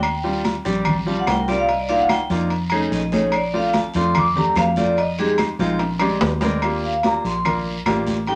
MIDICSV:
0, 0, Header, 1, 5, 480
1, 0, Start_track
1, 0, Key_signature, -2, "major"
1, 0, Tempo, 412088
1, 42, Time_signature, 4, 2, 24, 8
1, 9728, End_track
2, 0, Start_track
2, 0, Title_t, "Vibraphone"
2, 0, Program_c, 0, 11
2, 0, Note_on_c, 0, 79, 94
2, 470, Note_off_c, 0, 79, 0
2, 1256, Note_on_c, 0, 81, 95
2, 1365, Note_off_c, 0, 81, 0
2, 1390, Note_on_c, 0, 78, 86
2, 1492, Note_off_c, 0, 78, 0
2, 1508, Note_on_c, 0, 79, 104
2, 1611, Note_off_c, 0, 79, 0
2, 1627, Note_on_c, 0, 70, 69
2, 1730, Note_off_c, 0, 70, 0
2, 1731, Note_on_c, 0, 74, 98
2, 1842, Note_off_c, 0, 74, 0
2, 1851, Note_on_c, 0, 77, 97
2, 1962, Note_off_c, 0, 77, 0
2, 1966, Note_on_c, 0, 75, 82
2, 2079, Note_off_c, 0, 75, 0
2, 2090, Note_on_c, 0, 74, 83
2, 2201, Note_off_c, 0, 74, 0
2, 2208, Note_on_c, 0, 77, 98
2, 2320, Note_off_c, 0, 77, 0
2, 2330, Note_on_c, 0, 78, 82
2, 2441, Note_off_c, 0, 78, 0
2, 2456, Note_on_c, 0, 79, 94
2, 2595, Note_off_c, 0, 79, 0
2, 3412, Note_on_c, 0, 75, 89
2, 3638, Note_off_c, 0, 75, 0
2, 3654, Note_on_c, 0, 73, 92
2, 3880, Note_off_c, 0, 73, 0
2, 3904, Note_on_c, 0, 74, 92
2, 4125, Note_off_c, 0, 74, 0
2, 4144, Note_on_c, 0, 77, 88
2, 4365, Note_off_c, 0, 77, 0
2, 4393, Note_on_c, 0, 81, 93
2, 4609, Note_off_c, 0, 81, 0
2, 4635, Note_on_c, 0, 84, 109
2, 4850, Note_off_c, 0, 84, 0
2, 4871, Note_on_c, 0, 86, 112
2, 5088, Note_off_c, 0, 86, 0
2, 5094, Note_on_c, 0, 82, 105
2, 5319, Note_off_c, 0, 82, 0
2, 5329, Note_on_c, 0, 77, 96
2, 5557, Note_off_c, 0, 77, 0
2, 5564, Note_on_c, 0, 74, 101
2, 5794, Note_off_c, 0, 74, 0
2, 5812, Note_on_c, 0, 75, 108
2, 6038, Note_off_c, 0, 75, 0
2, 6052, Note_on_c, 0, 68, 104
2, 6192, Note_off_c, 0, 68, 0
2, 7966, Note_on_c, 0, 77, 84
2, 8195, Note_off_c, 0, 77, 0
2, 8212, Note_on_c, 0, 82, 91
2, 8438, Note_off_c, 0, 82, 0
2, 8460, Note_on_c, 0, 84, 100
2, 8896, Note_off_c, 0, 84, 0
2, 9650, Note_on_c, 0, 79, 101
2, 9728, Note_off_c, 0, 79, 0
2, 9728, End_track
3, 0, Start_track
3, 0, Title_t, "Grand piano"
3, 0, Program_c, 1, 0
3, 276, Note_on_c, 1, 60, 77
3, 278, Note_on_c, 1, 55, 80
3, 280, Note_on_c, 1, 65, 89
3, 283, Note_on_c, 1, 62, 78
3, 615, Note_off_c, 1, 55, 0
3, 615, Note_off_c, 1, 60, 0
3, 617, Note_off_c, 1, 65, 0
3, 618, Note_off_c, 1, 62, 0
3, 757, Note_on_c, 1, 60, 88
3, 757, Note_on_c, 1, 67, 105
3, 759, Note_on_c, 1, 55, 102
3, 760, Note_on_c, 1, 62, 93
3, 1094, Note_off_c, 1, 67, 0
3, 1095, Note_off_c, 1, 55, 0
3, 1095, Note_off_c, 1, 60, 0
3, 1096, Note_off_c, 1, 62, 0
3, 1238, Note_on_c, 1, 65, 88
3, 1240, Note_on_c, 1, 55, 87
3, 1242, Note_on_c, 1, 62, 75
3, 1244, Note_on_c, 1, 60, 78
3, 1575, Note_off_c, 1, 65, 0
3, 1576, Note_off_c, 1, 55, 0
3, 1577, Note_off_c, 1, 62, 0
3, 1578, Note_off_c, 1, 60, 0
3, 1723, Note_on_c, 1, 55, 86
3, 1723, Note_on_c, 1, 60, 82
3, 1726, Note_on_c, 1, 62, 85
3, 1726, Note_on_c, 1, 65, 95
3, 1961, Note_off_c, 1, 60, 0
3, 1962, Note_off_c, 1, 55, 0
3, 1963, Note_off_c, 1, 62, 0
3, 1963, Note_off_c, 1, 65, 0
3, 2201, Note_on_c, 1, 58, 80
3, 2202, Note_on_c, 1, 62, 75
3, 2203, Note_on_c, 1, 63, 74
3, 2205, Note_on_c, 1, 65, 94
3, 2536, Note_off_c, 1, 58, 0
3, 2537, Note_off_c, 1, 62, 0
3, 2537, Note_off_c, 1, 63, 0
3, 2538, Note_off_c, 1, 65, 0
3, 2682, Note_on_c, 1, 58, 87
3, 2684, Note_on_c, 1, 62, 79
3, 2686, Note_on_c, 1, 63, 83
3, 2686, Note_on_c, 1, 65, 101
3, 2921, Note_off_c, 1, 58, 0
3, 2922, Note_off_c, 1, 62, 0
3, 2923, Note_off_c, 1, 63, 0
3, 2923, Note_off_c, 1, 65, 0
3, 3166, Note_on_c, 1, 63, 98
3, 3167, Note_on_c, 1, 57, 98
3, 3167, Note_on_c, 1, 61, 95
3, 3168, Note_on_c, 1, 68, 105
3, 3498, Note_off_c, 1, 63, 0
3, 3499, Note_off_c, 1, 57, 0
3, 3499, Note_off_c, 1, 61, 0
3, 3499, Note_off_c, 1, 68, 0
3, 3636, Note_on_c, 1, 57, 95
3, 3637, Note_on_c, 1, 68, 95
3, 3639, Note_on_c, 1, 61, 79
3, 3640, Note_on_c, 1, 63, 77
3, 3877, Note_off_c, 1, 57, 0
3, 3878, Note_off_c, 1, 68, 0
3, 3879, Note_off_c, 1, 61, 0
3, 3879, Note_off_c, 1, 63, 0
3, 4117, Note_on_c, 1, 62, 76
3, 4120, Note_on_c, 1, 57, 81
3, 4121, Note_on_c, 1, 60, 82
3, 4122, Note_on_c, 1, 65, 97
3, 4454, Note_off_c, 1, 62, 0
3, 4455, Note_off_c, 1, 57, 0
3, 4456, Note_off_c, 1, 60, 0
3, 4456, Note_off_c, 1, 65, 0
3, 4606, Note_on_c, 1, 57, 86
3, 4607, Note_on_c, 1, 60, 83
3, 4610, Note_on_c, 1, 65, 100
3, 4611, Note_on_c, 1, 62, 81
3, 4938, Note_off_c, 1, 57, 0
3, 4939, Note_off_c, 1, 60, 0
3, 4940, Note_off_c, 1, 62, 0
3, 4940, Note_off_c, 1, 65, 0
3, 5077, Note_on_c, 1, 60, 82
3, 5079, Note_on_c, 1, 62, 73
3, 5080, Note_on_c, 1, 57, 81
3, 5082, Note_on_c, 1, 67, 94
3, 5414, Note_off_c, 1, 60, 0
3, 5415, Note_off_c, 1, 57, 0
3, 5415, Note_off_c, 1, 62, 0
3, 5416, Note_off_c, 1, 67, 0
3, 5556, Note_on_c, 1, 57, 86
3, 5557, Note_on_c, 1, 65, 100
3, 5559, Note_on_c, 1, 60, 83
3, 5560, Note_on_c, 1, 62, 81
3, 5797, Note_off_c, 1, 57, 0
3, 5797, Note_off_c, 1, 65, 0
3, 5798, Note_off_c, 1, 60, 0
3, 5799, Note_off_c, 1, 62, 0
3, 6040, Note_on_c, 1, 60, 81
3, 6041, Note_on_c, 1, 56, 94
3, 6042, Note_on_c, 1, 63, 84
3, 6044, Note_on_c, 1, 67, 95
3, 6375, Note_off_c, 1, 60, 0
3, 6376, Note_off_c, 1, 56, 0
3, 6376, Note_off_c, 1, 63, 0
3, 6377, Note_off_c, 1, 67, 0
3, 6519, Note_on_c, 1, 56, 100
3, 6521, Note_on_c, 1, 60, 90
3, 6522, Note_on_c, 1, 63, 95
3, 6522, Note_on_c, 1, 65, 115
3, 6758, Note_off_c, 1, 56, 0
3, 6759, Note_off_c, 1, 60, 0
3, 6760, Note_off_c, 1, 63, 0
3, 6760, Note_off_c, 1, 65, 0
3, 7000, Note_on_c, 1, 56, 108
3, 7000, Note_on_c, 1, 60, 91
3, 7002, Note_on_c, 1, 62, 99
3, 7005, Note_on_c, 1, 67, 107
3, 7335, Note_off_c, 1, 56, 0
3, 7335, Note_off_c, 1, 60, 0
3, 7336, Note_off_c, 1, 62, 0
3, 7337, Note_off_c, 1, 67, 0
3, 7476, Note_on_c, 1, 56, 107
3, 7478, Note_on_c, 1, 60, 98
3, 7480, Note_on_c, 1, 62, 98
3, 7483, Note_on_c, 1, 70, 116
3, 7705, Note_off_c, 1, 62, 0
3, 7717, Note_off_c, 1, 56, 0
3, 7718, Note_off_c, 1, 60, 0
3, 7721, Note_off_c, 1, 70, 0
3, 7723, Note_on_c, 1, 62, 78
3, 7723, Note_on_c, 1, 65, 79
3, 7724, Note_on_c, 1, 58, 88
3, 7728, Note_on_c, 1, 67, 93
3, 8056, Note_off_c, 1, 62, 0
3, 8056, Note_off_c, 1, 65, 0
3, 8057, Note_off_c, 1, 58, 0
3, 8059, Note_off_c, 1, 67, 0
3, 8202, Note_on_c, 1, 62, 63
3, 8202, Note_on_c, 1, 67, 74
3, 8203, Note_on_c, 1, 58, 74
3, 8203, Note_on_c, 1, 65, 63
3, 8536, Note_off_c, 1, 58, 0
3, 8536, Note_off_c, 1, 62, 0
3, 8536, Note_off_c, 1, 65, 0
3, 8536, Note_off_c, 1, 67, 0
3, 8682, Note_on_c, 1, 62, 72
3, 8682, Note_on_c, 1, 70, 87
3, 8683, Note_on_c, 1, 65, 69
3, 8685, Note_on_c, 1, 58, 73
3, 9016, Note_off_c, 1, 62, 0
3, 9016, Note_off_c, 1, 65, 0
3, 9016, Note_off_c, 1, 70, 0
3, 9018, Note_off_c, 1, 58, 0
3, 9163, Note_on_c, 1, 62, 86
3, 9163, Note_on_c, 1, 65, 93
3, 9164, Note_on_c, 1, 67, 103
3, 9166, Note_on_c, 1, 58, 96
3, 9497, Note_off_c, 1, 62, 0
3, 9497, Note_off_c, 1, 65, 0
3, 9497, Note_off_c, 1, 67, 0
3, 9498, Note_off_c, 1, 58, 0
3, 9643, Note_on_c, 1, 57, 79
3, 9645, Note_on_c, 1, 60, 76
3, 9645, Note_on_c, 1, 63, 72
3, 9646, Note_on_c, 1, 67, 91
3, 9728, Note_off_c, 1, 57, 0
3, 9728, Note_off_c, 1, 60, 0
3, 9728, Note_off_c, 1, 63, 0
3, 9728, Note_off_c, 1, 67, 0
3, 9728, End_track
4, 0, Start_track
4, 0, Title_t, "Fingered electric bass"
4, 0, Program_c, 2, 33
4, 0, Note_on_c, 2, 39, 95
4, 688, Note_off_c, 2, 39, 0
4, 769, Note_on_c, 2, 34, 100
4, 1438, Note_off_c, 2, 34, 0
4, 1486, Note_on_c, 2, 36, 102
4, 2612, Note_off_c, 2, 36, 0
4, 2677, Note_on_c, 2, 41, 107
4, 3351, Note_off_c, 2, 41, 0
4, 3398, Note_on_c, 2, 34, 100
4, 4527, Note_off_c, 2, 34, 0
4, 4598, Note_on_c, 2, 41, 101
4, 5271, Note_off_c, 2, 41, 0
4, 5309, Note_on_c, 2, 41, 105
4, 6443, Note_off_c, 2, 41, 0
4, 6512, Note_on_c, 2, 34, 107
4, 7188, Note_off_c, 2, 34, 0
4, 7236, Note_on_c, 2, 39, 107
4, 8366, Note_off_c, 2, 39, 0
4, 8438, Note_on_c, 2, 34, 102
4, 9112, Note_off_c, 2, 34, 0
4, 9154, Note_on_c, 2, 33, 92
4, 9728, Note_off_c, 2, 33, 0
4, 9728, End_track
5, 0, Start_track
5, 0, Title_t, "Drums"
5, 33, Note_on_c, 9, 68, 112
5, 37, Note_on_c, 9, 74, 78
5, 43, Note_on_c, 9, 75, 70
5, 49, Note_on_c, 9, 63, 32
5, 149, Note_off_c, 9, 68, 0
5, 154, Note_off_c, 9, 74, 0
5, 159, Note_off_c, 9, 75, 0
5, 165, Note_off_c, 9, 63, 0
5, 292, Note_on_c, 9, 63, 35
5, 409, Note_off_c, 9, 63, 0
5, 516, Note_on_c, 9, 73, 74
5, 521, Note_on_c, 9, 68, 90
5, 524, Note_on_c, 9, 63, 98
5, 632, Note_off_c, 9, 73, 0
5, 638, Note_off_c, 9, 68, 0
5, 640, Note_off_c, 9, 63, 0
5, 758, Note_on_c, 9, 73, 74
5, 875, Note_off_c, 9, 73, 0
5, 990, Note_on_c, 9, 68, 104
5, 997, Note_on_c, 9, 74, 69
5, 997, Note_on_c, 9, 75, 69
5, 1000, Note_on_c, 9, 63, 34
5, 1000, Note_on_c, 9, 64, 91
5, 1106, Note_off_c, 9, 68, 0
5, 1113, Note_off_c, 9, 75, 0
5, 1114, Note_off_c, 9, 74, 0
5, 1116, Note_off_c, 9, 63, 0
5, 1116, Note_off_c, 9, 64, 0
5, 1240, Note_on_c, 9, 63, 39
5, 1357, Note_off_c, 9, 63, 0
5, 1476, Note_on_c, 9, 75, 67
5, 1480, Note_on_c, 9, 73, 76
5, 1483, Note_on_c, 9, 66, 81
5, 1483, Note_on_c, 9, 68, 118
5, 1485, Note_on_c, 9, 63, 79
5, 1592, Note_off_c, 9, 75, 0
5, 1596, Note_off_c, 9, 73, 0
5, 1600, Note_off_c, 9, 66, 0
5, 1600, Note_off_c, 9, 68, 0
5, 1601, Note_off_c, 9, 63, 0
5, 1723, Note_on_c, 9, 73, 67
5, 1840, Note_off_c, 9, 73, 0
5, 1963, Note_on_c, 9, 74, 75
5, 1964, Note_on_c, 9, 68, 86
5, 1968, Note_on_c, 9, 63, 37
5, 2080, Note_off_c, 9, 74, 0
5, 2081, Note_off_c, 9, 68, 0
5, 2085, Note_off_c, 9, 63, 0
5, 2196, Note_on_c, 9, 68, 77
5, 2210, Note_on_c, 9, 63, 39
5, 2313, Note_off_c, 9, 68, 0
5, 2326, Note_off_c, 9, 63, 0
5, 2434, Note_on_c, 9, 75, 71
5, 2439, Note_on_c, 9, 68, 113
5, 2440, Note_on_c, 9, 63, 96
5, 2443, Note_on_c, 9, 73, 76
5, 2551, Note_off_c, 9, 75, 0
5, 2556, Note_off_c, 9, 63, 0
5, 2556, Note_off_c, 9, 68, 0
5, 2560, Note_off_c, 9, 73, 0
5, 2680, Note_on_c, 9, 73, 78
5, 2689, Note_on_c, 9, 63, 37
5, 2797, Note_off_c, 9, 73, 0
5, 2805, Note_off_c, 9, 63, 0
5, 2916, Note_on_c, 9, 74, 68
5, 2917, Note_on_c, 9, 68, 83
5, 2920, Note_on_c, 9, 63, 36
5, 3032, Note_off_c, 9, 74, 0
5, 3033, Note_off_c, 9, 68, 0
5, 3037, Note_off_c, 9, 63, 0
5, 3142, Note_on_c, 9, 68, 105
5, 3164, Note_on_c, 9, 75, 66
5, 3166, Note_on_c, 9, 63, 40
5, 3259, Note_off_c, 9, 68, 0
5, 3281, Note_off_c, 9, 75, 0
5, 3282, Note_off_c, 9, 63, 0
5, 3401, Note_on_c, 9, 63, 35
5, 3404, Note_on_c, 9, 73, 70
5, 3517, Note_off_c, 9, 63, 0
5, 3520, Note_off_c, 9, 73, 0
5, 3635, Note_on_c, 9, 73, 73
5, 3649, Note_on_c, 9, 63, 88
5, 3752, Note_off_c, 9, 73, 0
5, 3765, Note_off_c, 9, 63, 0
5, 3866, Note_on_c, 9, 68, 100
5, 3867, Note_on_c, 9, 74, 77
5, 3880, Note_on_c, 9, 63, 36
5, 3881, Note_on_c, 9, 75, 74
5, 3983, Note_off_c, 9, 68, 0
5, 3983, Note_off_c, 9, 74, 0
5, 3996, Note_off_c, 9, 63, 0
5, 3998, Note_off_c, 9, 75, 0
5, 4121, Note_on_c, 9, 63, 38
5, 4238, Note_off_c, 9, 63, 0
5, 4347, Note_on_c, 9, 73, 74
5, 4352, Note_on_c, 9, 68, 89
5, 4360, Note_on_c, 9, 63, 101
5, 4464, Note_off_c, 9, 73, 0
5, 4469, Note_off_c, 9, 68, 0
5, 4476, Note_off_c, 9, 63, 0
5, 4585, Note_on_c, 9, 73, 71
5, 4701, Note_off_c, 9, 73, 0
5, 4825, Note_on_c, 9, 74, 71
5, 4832, Note_on_c, 9, 68, 108
5, 4838, Note_on_c, 9, 75, 75
5, 4840, Note_on_c, 9, 63, 36
5, 4840, Note_on_c, 9, 64, 82
5, 4942, Note_off_c, 9, 74, 0
5, 4948, Note_off_c, 9, 68, 0
5, 4955, Note_off_c, 9, 75, 0
5, 4957, Note_off_c, 9, 63, 0
5, 4957, Note_off_c, 9, 64, 0
5, 5074, Note_on_c, 9, 63, 39
5, 5074, Note_on_c, 9, 64, 87
5, 5190, Note_off_c, 9, 63, 0
5, 5190, Note_off_c, 9, 64, 0
5, 5306, Note_on_c, 9, 73, 75
5, 5315, Note_on_c, 9, 63, 76
5, 5315, Note_on_c, 9, 75, 67
5, 5323, Note_on_c, 9, 66, 83
5, 5323, Note_on_c, 9, 68, 121
5, 5423, Note_off_c, 9, 73, 0
5, 5431, Note_off_c, 9, 63, 0
5, 5431, Note_off_c, 9, 75, 0
5, 5440, Note_off_c, 9, 66, 0
5, 5440, Note_off_c, 9, 68, 0
5, 5547, Note_on_c, 9, 73, 72
5, 5556, Note_on_c, 9, 63, 79
5, 5664, Note_off_c, 9, 73, 0
5, 5672, Note_off_c, 9, 63, 0
5, 5789, Note_on_c, 9, 74, 78
5, 5800, Note_on_c, 9, 68, 93
5, 5802, Note_on_c, 9, 63, 37
5, 5906, Note_off_c, 9, 74, 0
5, 5916, Note_off_c, 9, 68, 0
5, 5918, Note_off_c, 9, 63, 0
5, 6040, Note_on_c, 9, 68, 79
5, 6044, Note_on_c, 9, 63, 37
5, 6156, Note_off_c, 9, 68, 0
5, 6160, Note_off_c, 9, 63, 0
5, 6266, Note_on_c, 9, 68, 108
5, 6266, Note_on_c, 9, 73, 75
5, 6276, Note_on_c, 9, 63, 100
5, 6280, Note_on_c, 9, 75, 69
5, 6382, Note_off_c, 9, 68, 0
5, 6382, Note_off_c, 9, 73, 0
5, 6392, Note_off_c, 9, 63, 0
5, 6397, Note_off_c, 9, 75, 0
5, 6516, Note_on_c, 9, 73, 72
5, 6520, Note_on_c, 9, 63, 40
5, 6633, Note_off_c, 9, 73, 0
5, 6636, Note_off_c, 9, 63, 0
5, 6747, Note_on_c, 9, 74, 71
5, 6749, Note_on_c, 9, 65, 77
5, 6749, Note_on_c, 9, 68, 86
5, 6760, Note_on_c, 9, 63, 35
5, 6863, Note_off_c, 9, 74, 0
5, 6865, Note_off_c, 9, 65, 0
5, 6865, Note_off_c, 9, 68, 0
5, 6876, Note_off_c, 9, 63, 0
5, 6983, Note_on_c, 9, 65, 87
5, 6983, Note_on_c, 9, 68, 108
5, 6993, Note_on_c, 9, 75, 72
5, 7005, Note_on_c, 9, 63, 40
5, 7100, Note_off_c, 9, 65, 0
5, 7100, Note_off_c, 9, 68, 0
5, 7109, Note_off_c, 9, 75, 0
5, 7121, Note_off_c, 9, 63, 0
5, 7233, Note_on_c, 9, 66, 121
5, 7233, Note_on_c, 9, 73, 74
5, 7349, Note_off_c, 9, 66, 0
5, 7349, Note_off_c, 9, 73, 0
5, 7466, Note_on_c, 9, 66, 93
5, 7467, Note_on_c, 9, 73, 76
5, 7486, Note_on_c, 9, 63, 88
5, 7582, Note_off_c, 9, 66, 0
5, 7584, Note_off_c, 9, 73, 0
5, 7602, Note_off_c, 9, 63, 0
5, 7712, Note_on_c, 9, 68, 106
5, 7716, Note_on_c, 9, 75, 66
5, 7717, Note_on_c, 9, 63, 34
5, 7720, Note_on_c, 9, 74, 74
5, 7829, Note_off_c, 9, 68, 0
5, 7833, Note_off_c, 9, 75, 0
5, 7834, Note_off_c, 9, 63, 0
5, 7836, Note_off_c, 9, 74, 0
5, 7967, Note_on_c, 9, 63, 39
5, 8084, Note_off_c, 9, 63, 0
5, 8192, Note_on_c, 9, 68, 83
5, 8197, Note_on_c, 9, 73, 64
5, 8204, Note_on_c, 9, 63, 96
5, 8309, Note_off_c, 9, 68, 0
5, 8313, Note_off_c, 9, 73, 0
5, 8320, Note_off_c, 9, 63, 0
5, 8448, Note_on_c, 9, 73, 69
5, 8564, Note_off_c, 9, 73, 0
5, 8678, Note_on_c, 9, 75, 76
5, 8679, Note_on_c, 9, 63, 35
5, 8679, Note_on_c, 9, 64, 75
5, 8681, Note_on_c, 9, 74, 71
5, 8684, Note_on_c, 9, 68, 106
5, 8794, Note_off_c, 9, 75, 0
5, 8796, Note_off_c, 9, 63, 0
5, 8796, Note_off_c, 9, 64, 0
5, 8797, Note_off_c, 9, 74, 0
5, 8800, Note_off_c, 9, 68, 0
5, 8924, Note_on_c, 9, 63, 38
5, 9041, Note_off_c, 9, 63, 0
5, 9153, Note_on_c, 9, 75, 66
5, 9156, Note_on_c, 9, 63, 82
5, 9157, Note_on_c, 9, 68, 116
5, 9158, Note_on_c, 9, 73, 71
5, 9270, Note_off_c, 9, 75, 0
5, 9272, Note_off_c, 9, 63, 0
5, 9273, Note_off_c, 9, 68, 0
5, 9275, Note_off_c, 9, 73, 0
5, 9396, Note_on_c, 9, 73, 71
5, 9402, Note_on_c, 9, 63, 72
5, 9512, Note_off_c, 9, 73, 0
5, 9518, Note_off_c, 9, 63, 0
5, 9628, Note_on_c, 9, 74, 79
5, 9635, Note_on_c, 9, 63, 33
5, 9638, Note_on_c, 9, 68, 80
5, 9728, Note_off_c, 9, 63, 0
5, 9728, Note_off_c, 9, 68, 0
5, 9728, Note_off_c, 9, 74, 0
5, 9728, End_track
0, 0, End_of_file